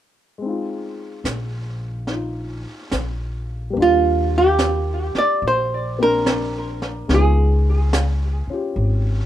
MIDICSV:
0, 0, Header, 1, 6, 480
1, 0, Start_track
1, 0, Key_signature, -3, "major"
1, 0, Tempo, 834492
1, 239, Time_signature, 4, 2, 24, 8
1, 5325, End_track
2, 0, Start_track
2, 0, Title_t, "Hollow-body jazz guitar"
2, 0, Program_c, 0, 26
2, 2199, Note_on_c, 0, 65, 73
2, 2504, Note_off_c, 0, 65, 0
2, 2518, Note_on_c, 0, 67, 63
2, 2980, Note_off_c, 0, 67, 0
2, 2982, Note_on_c, 0, 74, 68
2, 3137, Note_off_c, 0, 74, 0
2, 3149, Note_on_c, 0, 72, 72
2, 3460, Note_off_c, 0, 72, 0
2, 3467, Note_on_c, 0, 70, 74
2, 4108, Note_on_c, 0, 68, 65
2, 4113, Note_off_c, 0, 70, 0
2, 4549, Note_off_c, 0, 68, 0
2, 5325, End_track
3, 0, Start_track
3, 0, Title_t, "Grand piano"
3, 0, Program_c, 1, 0
3, 219, Note_on_c, 1, 56, 40
3, 239, Note_on_c, 1, 60, 37
3, 262, Note_on_c, 1, 63, 36
3, 278, Note_on_c, 1, 65, 45
3, 340, Control_c, 1, 64, 127
3, 1195, Note_off_c, 1, 63, 0
3, 1204, Note_on_c, 1, 63, 33
3, 1213, Note_off_c, 1, 65, 0
3, 1222, Note_on_c, 1, 65, 34
3, 2130, Note_on_c, 1, 55, 42
3, 2147, Note_off_c, 1, 56, 0
3, 2148, Note_on_c, 1, 58, 39
3, 2157, Note_off_c, 1, 60, 0
3, 2160, Note_off_c, 1, 63, 0
3, 2164, Control_c, 1, 64, 0
3, 2168, Note_on_c, 1, 62, 39
3, 2169, Note_off_c, 1, 65, 0
3, 2188, Note_on_c, 1, 65, 47
3, 2275, Control_c, 1, 64, 127
3, 3434, Note_off_c, 1, 58, 0
3, 3443, Note_on_c, 1, 58, 40
3, 3448, Note_on_c, 1, 60, 37
3, 3452, Note_off_c, 1, 62, 0
3, 3461, Note_on_c, 1, 62, 43
3, 4065, Note_off_c, 1, 55, 0
3, 4071, Note_on_c, 1, 56, 38
3, 4082, Note_off_c, 1, 58, 0
3, 4083, Note_on_c, 1, 59, 33
3, 4085, Note_off_c, 1, 60, 0
3, 4086, Control_c, 1, 64, 0
3, 4088, Note_on_c, 1, 63, 34
3, 4091, Note_off_c, 1, 62, 0
3, 4092, Note_off_c, 1, 65, 0
3, 4101, Note_on_c, 1, 65, 40
3, 4169, Control_c, 1, 64, 127
3, 4887, Note_off_c, 1, 65, 0
3, 4889, Note_on_c, 1, 61, 36
3, 4896, Note_on_c, 1, 65, 36
3, 4911, Note_on_c, 1, 67, 41
3, 5325, Note_off_c, 1, 56, 0
3, 5325, Note_off_c, 1, 59, 0
3, 5325, Note_off_c, 1, 61, 0
3, 5325, Note_off_c, 1, 63, 0
3, 5325, Note_off_c, 1, 65, 0
3, 5325, Note_off_c, 1, 67, 0
3, 5325, End_track
4, 0, Start_track
4, 0, Title_t, "Upright bass"
4, 0, Program_c, 2, 32
4, 715, Note_on_c, 2, 34, 57
4, 1520, Note_off_c, 2, 34, 0
4, 1681, Note_on_c, 2, 34, 55
4, 2136, Note_off_c, 2, 34, 0
4, 2167, Note_on_c, 2, 39, 72
4, 2937, Note_off_c, 2, 39, 0
4, 3118, Note_on_c, 2, 34, 65
4, 4055, Note_off_c, 2, 34, 0
4, 4078, Note_on_c, 2, 37, 75
4, 4850, Note_off_c, 2, 37, 0
4, 5039, Note_on_c, 2, 32, 69
4, 5325, Note_off_c, 2, 32, 0
4, 5325, End_track
5, 0, Start_track
5, 0, Title_t, "Muted upright bass strokes"
5, 2964, Note_on_c, 9, 29, 27
5, 3021, Note_off_c, 9, 29, 0
5, 4874, Note_on_c, 9, 29, 30
5, 4932, Note_off_c, 9, 29, 0
5, 5325, End_track
6, 0, Start_track
6, 0, Title_t, "Drums"
6, 238, Note_on_c, 9, 25, 26
6, 720, Note_on_c, 9, 38, 31
6, 720, Note_on_c, 9, 44, 42
6, 777, Note_off_c, 9, 38, 0
6, 777, Note_off_c, 9, 44, 0
6, 1192, Note_off_c, 9, 25, 0
6, 1192, Note_on_c, 9, 25, 29
6, 1192, Note_on_c, 9, 38, 20
6, 1250, Note_off_c, 9, 38, 0
6, 1677, Note_on_c, 9, 38, 34
6, 1677, Note_on_c, 9, 44, 43
6, 1735, Note_off_c, 9, 38, 0
6, 1735, Note_off_c, 9, 44, 0
6, 2161, Note_off_c, 9, 25, 0
6, 2161, Note_on_c, 9, 25, 26
6, 2638, Note_on_c, 9, 38, 36
6, 2638, Note_on_c, 9, 44, 44
6, 2695, Note_off_c, 9, 38, 0
6, 2695, Note_off_c, 9, 44, 0
6, 2961, Note_on_c, 9, 38, 25
6, 3019, Note_off_c, 9, 38, 0
6, 3126, Note_off_c, 9, 25, 0
6, 3126, Note_on_c, 9, 25, 33
6, 3602, Note_on_c, 9, 38, 36
6, 3602, Note_on_c, 9, 44, 38
6, 3660, Note_off_c, 9, 38, 0
6, 3660, Note_off_c, 9, 44, 0
6, 3923, Note_on_c, 9, 38, 23
6, 3980, Note_off_c, 9, 38, 0
6, 4079, Note_off_c, 9, 25, 0
6, 4079, Note_on_c, 9, 25, 26
6, 4079, Note_on_c, 9, 38, 23
6, 4137, Note_off_c, 9, 38, 0
6, 4562, Note_on_c, 9, 38, 40
6, 4562, Note_on_c, 9, 44, 53
6, 4620, Note_off_c, 9, 38, 0
6, 4620, Note_off_c, 9, 44, 0
6, 5042, Note_off_c, 9, 25, 0
6, 5042, Note_on_c, 9, 25, 34
6, 5325, Note_off_c, 9, 25, 0
6, 5325, End_track
0, 0, End_of_file